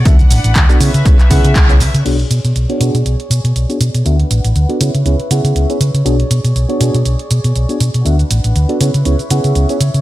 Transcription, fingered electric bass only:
X:1
M:4/4
L:1/16
Q:"Swing 16ths" 1/4=120
K:Bdor
V:1 name="Fingered electric bass" clef=bass
D,, z A,,, A,,, z2 C, C, C,, z C, C, C,,2 C, C, | B,,, z B,, B,, B,,, z B,, B,, B,,, z B,, B,, B,,, z B,, B,, | D,, z A,,, A,,, D,, z C, C, C,, z C, C, C,, z C, C, | B,,, z B,, B,, B,,, z B,, B,, B,,, z B,, B,, B,,, z B,, B,, |
D,, z A,,, A,,, D,, z C, C, C,, z C, C, C,, z C, C, |]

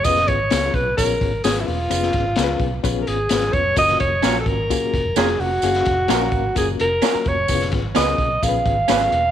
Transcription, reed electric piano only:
X:1
M:4/4
L:1/8
Q:1/4=129
K:F#
V:1 name="Reed electric piano"
[B,CEGB] z [B,C=E^EGc] z [B,CEGc] z [B,CEGB] z | [B,CEGB] z [B,CEGAB] z [B,CEGB] z [B,CEGB] z | [A,CEFA] z [A,CEFA] z [A,CEFG] z [A,CEFA] z | [A,CFGe] z [A,CFGAe] z [A,CEFA] z [A,CEFA] z |
[B,C=E^EGB] z [B,CEGA] z [B,CEGAB] z [B,CEGB] z |]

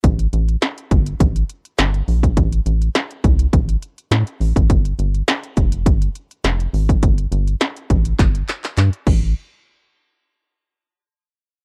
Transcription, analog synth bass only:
X:1
M:4/4
L:1/16
Q:1/4=103
K:Am
V:1 name="Analog synth bass" clef=bass
A,,,2 A,,,2 z2 G,,,2 A,,,2 z2 G,,,2 _B,,,2 | A,,,2 A,,,2 z2 C,,2 A,,,2 z2 A,, z A,,, ^G,,, | G,,,2 G,,,2 z2 F,,,2 G,,,2 z2 F,,,2 ^G,,,2 | G,,,2 G,,,2 z2 A,,,2 G,,,2 z2 G,, z A,,,2 |
z16 |]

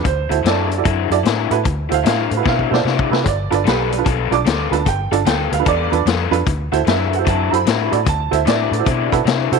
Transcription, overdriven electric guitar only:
X:1
M:4/4
L:1/8
Q:"Swing" 1/4=150
K:Dmix
V:1 name="Overdriven electric guitar"
z2 [D,F,CE] z [D,F,CE] z [D,F,CE] z | z2 [D,F,CE] z [D,F,CE] z [D,F,CE] z | z2 [G,B,=FA] z [G,B,FA] z [G,B,FA] z | z2 [G,B,=FA] z [G,B,FA] z [G,B,FA] z |
z2 [D,F,CE] z [D,F,CE] z [D,F,CE] z | z2 [D,F,CE] z [D,F,CE] z [D,F,CE] z |]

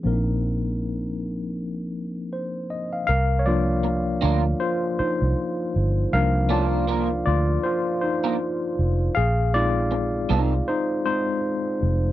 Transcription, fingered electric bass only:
X:1
M:4/4
L:1/16
Q:"Swing 16ths" 1/4=79
K:Cm
V:1 name="Fingered electric bass" clef=bass
B,,,16 | C,,6 D,,2 z3 C,, z2 G,,,2 | C,,6 D,,2 z6 F,,,2 | B,,,6 C,,2 z6 F,,,2 |]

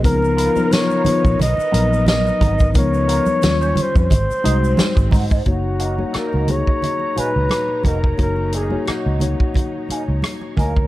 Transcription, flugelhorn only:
X:1
M:4/4
L:1/16
Q:"Swing 16ths" 1/4=88
K:F#
V:1 name="Flugelhorn"
A4 c4 d4 d4 | c6 ^B B6- B z2 | F4 A2 c4 B4 A2 | A2 G2 F6 z4 A2 |]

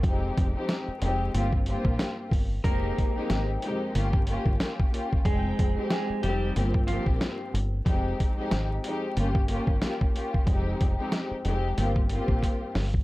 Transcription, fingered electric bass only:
X:1
M:4/4
L:1/16
Q:"Swing 16ths" 1/4=92
K:Fm
V:1 name="Fingered electric bass" clef=bass
F,,,2 F,,, z3 F,,,2 G,,,3 B,,, z2 G,,,2 | F,,,2 z2 A,,,2 z2 G,,,3 G,,, z4 | F,,,2 F,,, z3 F,,,2 G,,,3 B,,, z2 G,,,2 | F,,,2 z2 A,,,2 z2 G,,,3 G,,, z4 |
F,,,2 F,,, z3 F,,,2 G,,,3 B,,, z2 G,,,2 |]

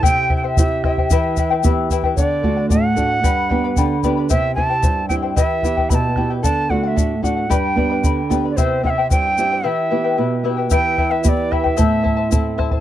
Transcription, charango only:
X:1
M:2/4
L:1/16
Q:1/4=112
K:Em
V:1 name="Charango"
[EGceg]2 [Eceg] [Ecg] [Eceg]2 [Eceg] [Ecg] | [EGBeg]2 [EBeg] [EBg] [EBeg]2 [EBeg] [EBg] | [Adf]2 [Adf] [df] [Adf]2 [Adf] [df] | [GBdgb]2 [Bdgb] [Bdb] [Bdgb]2 [Bdgb] [Bdb] |
[EGceg]2 [Eceg] [Ecg] [Eceg]2 [Eceg] [Ecg] | [EGBeg]2 [EBeg] [EBg] [EBeg]2 [EBeg] [EBg] | [Adf]2 [Adf] [df] [Adf]2 [Adf] [df] | [GBdgb]2 [Bdgb] [Bdb] [Bdgb]2 [Bdgb] [Bdb] |
[EGceg]2 [Eceg] [Ecg] [Eceg]2 [Eceg] [Ecg] | [EGBeg]2 [EBeg] [EBg] [EBeg]2 [EBeg] [EBg] | [EGBeg]2 [EBeg] [EBg] [EBeg]2 [EBeg] [EBg] | [EAcea]2 [Ecea] [Eca] [Ecea]2 [Ecea] [Eca] |]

